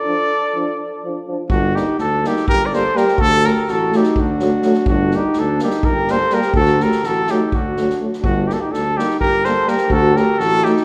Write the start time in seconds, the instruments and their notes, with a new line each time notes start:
Already playing: flugelhorn A4, trumpet D5
0.05 euphonium F3, french horn D4
0.54 euphonium F3, french horn D4
1.04 euphonium F3, french horn D4
1.27 euphonium F3, french horn D4
1.49 tuba G1, flugelhorn D4, trumpet F#4, kick
1.75 euphonium G3, french horn A#3, flugelhorn D#4, trumpet G4, snare
1.98 tuba D2, flugelhorn D4, trumpet A4, snare
2.24 euphonium G3, french horn A#3, flugelhorn D#4, trumpet G4, snare
2.36 snare
2.48 tuba G1, flugelhorn G4, trumpet A#4, kick
2.64 flugelhorn A#4, trumpet D5
2.70 euphonium G3, french horn A#3, flugelhorn A4, snare
2.75 trumpet C5
2.94 euphonium G3, french horn A#3, flugelhorn G4, trumpet A#4, snare
3.08 snare
3.18 tuba D2, flugelhorn F#4, trumpet A4, kick
3.43 euphonium F#3, french horn A3, flugelhorn G4, trumpet A#4, snare
3.68 tuba A1, flugelhorn F#4, trumpet A4, snare
3.91 euphonium F#3, french horn A3, snare
3.96 flugelhorn D#4, trumpet G4
4.03 snare
4.16 tuba D2, kick
4.20 flugelhorn D4, trumpet F#4
4.39 euphonium F#3, french horn A3, snare
4.62 euphonium F#3, french horn A3, snare
4.74 snare
4.86 tuba G1, trumpet F#4, kick
4.91 flugelhorn D4
5.11 french horn A#3, snare
5.15 euphonium G3, flugelhorn D#4, trumpet G4
5.33 tuba D2, snare
5.39 flugelhorn D4, trumpet A4
5.59 french horn A#3, snare
5.63 euphonium G3, flugelhorn D#4, trumpet G4
5.70 snare
5.83 tuba G1, trumpet A#4, kick
5.90 flugelhorn G4
6.08 euphonium G3, french horn A#3, trumpet C5, snare
6.16 flugelhorn A4
6.30 euphonium G3, french horn A#3, snare
6.34 flugelhorn G4, trumpet A#4
6.42 snare
6.54 tuba D2, trumpet A4, kick
6.60 flugelhorn F#4
6.66 snare
6.80 euphonium F#3, french horn A3, flugelhorn G4, trumpet A#4, snare
6.92 snare
7.03 tuba A1, flugelhorn F#4, trumpet A4, snare
7.27 euphonium F#3, french horn A3, flugelhorn D#4, snare
7.31 trumpet G4
7.52 tuba D2, flugelhorn D4, trumpet F#4, kick
7.76 french horn A3, snare
7.80 euphonium F#3
7.90 snare
7.99 euphonium F#3, french horn A3
8.13 snare
8.20 tuba G1, flugelhorn D4, trumpet F#4, kick
8.47 euphonium G3, french horn A#3, flugelhorn D#4, trumpet G4, snare
8.53 flugelhorn F#4, trumpet A4
8.61 flugelhorn D#4, trumpet G4
8.71 tuba D2, flugelhorn D4, trumpet A4, snare
8.97 euphonium G3, french horn A#3, flugelhorn D#4, trumpet G4, snare
9.10 snare
9.19 tuba G1, flugelhorn G4, trumpet A#4, kick
9.44 euphonium G3, french horn A#3, flugelhorn A4, trumpet C5, snare
9.65 euphonium G3, french horn A#3, flugelhorn G4, trumpet A#4, snare
9.77 snare
9.89 tuba D2, flugelhorn F#4, trumpet A4, kick
10.13 euphonium F#3, french horn A3, flugelhorn G4, snare
10.17 trumpet A#4
10.39 tuba A1, flugelhorn F#4, trumpet A4, snare
10.63 euphonium F#3, french horn A3, flugelhorn D#4, trumpet G4, snare
10.76 snare